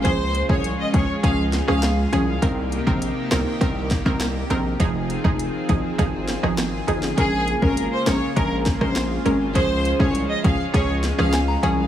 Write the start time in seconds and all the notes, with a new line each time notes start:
Already playing: C#3 F4 G#4
0.04 C#2 F3 G#3 C#4 G#4 C5, kick, closed hi-hat
0.35 closed hi-hat
0.49 C2 F3 C#4 G#4 C#5, kick
0.64 closed hi-hat
0.79 D#5
0.94 C#2 F3 C#4 G#4 C#5, kick, closed hi-hat
1.23 C#2 F3 C#4 G#4 F5, kick, closed hi-hat
1.53 snare, closed hi-hat
1.68 C#2 F3 C#4 G#4 F5, cross-stick
1.83 snare, closed hi-hat
2.12 C2 F3 C#4 G#4, closed hi-hat
2.42 C2 C3 D#3 A#3 C4 D#4 G4 A#4, kick, closed hi-hat
2.72 closed hi-hat
2.87 A#1 D#3 C4 A#4, kick
3.02 closed hi-hat
3.31 C2 D#3 C4 A#4, snare, closed hi-hat
3.61 C2 D#3 C4 A#4, kick, closed hi-hat
3.91 kick, snare, closed hi-hat
4.05 C2 D#3 C4 A#4, kick, cross-stick
4.20 snare, closed hi-hat
4.50 A#1 D#3 C4 A#4, closed hi-hat
4.80 F1 D#3 F3 C4 D#4 F4 G#4, kick, closed hi-hat
5.10 closed hi-hat
5.24 F1 F3 D#4 G#4, kick
5.39 closed hi-hat
5.69 G#1 F3 D#4 G#4, kick, closed hi-hat
5.98 G#1 F3 D#4 G#4, kick, closed hi-hat
6.28 snare, closed hi-hat
6.43 G#1 F3 D#4 G#4, cross-stick
6.58 snare, closed hi-hat
6.88 G1 F3 D#4 G#4, closed hi-hat
7.03 snare
7.17 A#1 C#3 G#3 A#3 C#4 G#4 A#4, kick, closed hi-hat
7.48 closed hi-hat
7.62 G#1 G#3 C#4 A#4, kick
7.77 closed hi-hat
7.92 C5
8.06 A#1 G#3 C#4 A#4 C#5, snare, closed hi-hat
8.36 A#1 G#3 C#4 A#4, kick, closed hi-hat
8.66 kick, snare, closed hi-hat
8.81 A#1 G#3 C#4 A#4 C5, kick, cross-stick
8.96 snare, closed hi-hat
9.25 G#1 G#3 C#4 A#4, closed hi-hat
9.55 C#2 F3 G#3 C#4 G#4 C5, kick, closed hi-hat
9.85 closed hi-hat
9.99 C2 F3 C#4 G#4 C#5, kick
10.15 closed hi-hat
10.30 D#5
10.44 C#2 F3 C#4 G#4 F5, kick, closed hi-hat
10.74 C#2 F3 C#4 G#4 C#5, kick, closed hi-hat
11.04 snare, closed hi-hat
11.18 C#2 F3 C#4 G#4 F5, cross-stick
11.33 G#5, snare, closed hi-hat
11.48 A#5
11.63 C2 F3 C#4 G#4 G#5, closed hi-hat